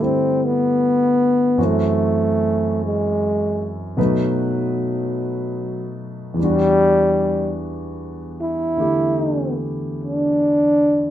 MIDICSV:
0, 0, Header, 1, 3, 480
1, 0, Start_track
1, 0, Tempo, 1197605
1, 638, Time_signature, 4, 2, 24, 8
1, 4451, End_track
2, 0, Start_track
2, 0, Title_t, "Trombone"
2, 0, Program_c, 0, 57
2, 13, Note_on_c, 0, 60, 72
2, 182, Note_on_c, 0, 59, 84
2, 188, Note_off_c, 0, 60, 0
2, 665, Note_on_c, 0, 57, 78
2, 671, Note_off_c, 0, 59, 0
2, 1130, Note_off_c, 0, 57, 0
2, 1141, Note_on_c, 0, 56, 69
2, 1519, Note_off_c, 0, 56, 0
2, 1612, Note_on_c, 0, 54, 61
2, 2385, Note_off_c, 0, 54, 0
2, 2569, Note_on_c, 0, 55, 97
2, 3027, Note_off_c, 0, 55, 0
2, 3368, Note_on_c, 0, 64, 84
2, 3826, Note_off_c, 0, 64, 0
2, 4024, Note_on_c, 0, 62, 84
2, 4451, Note_off_c, 0, 62, 0
2, 4451, End_track
3, 0, Start_track
3, 0, Title_t, "Grand piano"
3, 0, Program_c, 1, 0
3, 0, Control_c, 1, 64, 127
3, 0, Note_on_c, 1, 43, 44
3, 0, Note_on_c, 1, 50, 35
3, 0, Note_on_c, 1, 55, 30
3, 0, Note_on_c, 1, 57, 33
3, 0, Note_on_c, 1, 66, 50
3, 0, Note_on_c, 1, 71, 44
3, 2, Note_on_c, 1, 64, 38
3, 631, Note_off_c, 1, 66, 0
3, 632, Note_on_c, 1, 42, 46
3, 633, Note_off_c, 1, 43, 0
3, 633, Note_on_c, 1, 52, 44
3, 636, Note_off_c, 1, 50, 0
3, 637, Note_on_c, 1, 54, 43
3, 637, Note_on_c, 1, 66, 51
3, 638, Note_on_c, 1, 60, 42
3, 639, Note_off_c, 1, 55, 0
3, 640, Note_off_c, 1, 57, 0
3, 641, Note_off_c, 1, 71, 0
3, 642, Note_off_c, 1, 64, 0
3, 642, Control_c, 1, 64, 0
3, 710, Control_c, 1, 64, 127
3, 1587, Note_off_c, 1, 54, 0
3, 1591, Note_on_c, 1, 47, 44
3, 1593, Note_off_c, 1, 42, 0
3, 1593, Note_on_c, 1, 54, 46
3, 1594, Note_off_c, 1, 52, 0
3, 1595, Note_on_c, 1, 57, 44
3, 1596, Note_off_c, 1, 60, 0
3, 1596, Note_off_c, 1, 66, 0
3, 1596, Note_on_c, 1, 63, 44
3, 1598, Note_on_c, 1, 71, 53
3, 1602, Control_c, 1, 64, 0
3, 1659, Control_c, 1, 64, 127
3, 2541, Note_on_c, 1, 40, 40
3, 2551, Note_on_c, 1, 52, 35
3, 2554, Note_off_c, 1, 47, 0
3, 2554, Note_off_c, 1, 54, 0
3, 2555, Note_off_c, 1, 57, 0
3, 2556, Note_off_c, 1, 63, 0
3, 2557, Note_off_c, 1, 71, 0
3, 2562, Control_c, 1, 64, 0
3, 2563, Note_on_c, 1, 55, 35
3, 2573, Note_on_c, 1, 62, 40
3, 2583, Note_on_c, 1, 66, 44
3, 2632, Control_c, 1, 64, 127
3, 3514, Note_on_c, 1, 50, 37
3, 3519, Note_on_c, 1, 57, 35
3, 3525, Note_on_c, 1, 64, 33
3, 3527, Note_on_c, 1, 67, 41
3, 4451, Note_off_c, 1, 40, 0
3, 4451, Note_off_c, 1, 50, 0
3, 4451, Note_off_c, 1, 52, 0
3, 4451, Note_off_c, 1, 55, 0
3, 4451, Note_off_c, 1, 57, 0
3, 4451, Note_off_c, 1, 62, 0
3, 4451, Note_off_c, 1, 64, 0
3, 4451, Note_off_c, 1, 66, 0
3, 4451, Note_off_c, 1, 67, 0
3, 4451, End_track
0, 0, End_of_file